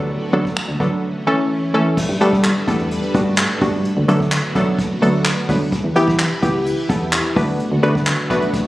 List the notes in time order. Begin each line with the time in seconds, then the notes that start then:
Already playing: D2 D3 F#3 A3 B3 D4 F#4 A4
0.33 D2 F#3 B3 D4 A4
0.45 kick
0.57 finger snap
0.68 D2
0.80 D3 F#3 B3 D4 A4, kick
1.04 E3 A3 C#4
1.27 E3 A3 C#4 A4
1.74 E3 A3 C#4 A4
1.97 G3 D4 A4 B4, kick, crash, impact
2.09 G2
2.21 G3 A3 B3 D4 A4, closed hi-hat
2.33 kick
2.44 clap, closed hi-hat
2.67 E2 G3 A3 B3 D4 A4, kick, closed hi-hat
2.79 closed hi-hat
2.91 closed hi-hat
3.03 closed hi-hat
3.14 G2 G3 A3 B3 D4 F#4, kick, closed hi-hat
3.38 clap, closed hi-hat
3.61 G2 G3 A3 B3 D4 F#4, kick, open hi-hat
3.85 D3 A3 B3 F#4, closed hi-hat
3.97 D2
4.08 D3 F#3 A3 B3 D4 A4, closed hi-hat
4.20 kick
4.32 clap, closed hi-hat
4.55 B1 F#3 A3 B3 D4 A4, kick, closed hi-hat
4.79 kick, closed hi-hat
5.02 D2 F#3 A3 B3 D4 A4, closed hi-hat
5.25 clap, closed hi-hat
5.49 D2 F#3 A3 B3 D4 B4, kick, open hi-hat
5.72 E3 E4 G4 B4, kick, closed hi-hat
5.84 E2
5.96 E3 B3 E4 G4, closed hi-hat
6.08 kick
6.19 clap, closed hi-hat
6.42 C#2 B3 E4 G4, kick, closed hi-hat
6.66 closed hi-hat
6.78 closed hi-hat
6.89 E2 B3 E4 A4, kick, closed hi-hat
7.13 clap, closed hi-hat
7.36 D2 D3 A3 B3 D4 F#4 B4, kick, open hi-hat
7.60 closed hi-hat
7.72 D2
7.83 D3 A3 B3 D4 F#4 B4, closed hi-hat
7.95 kick
8.07 clap, closed hi-hat
8.30 B1 A3 B3 D4 F#4 B4, kick, closed hi-hat
8.42 closed hi-hat
8.54 kick, closed hi-hat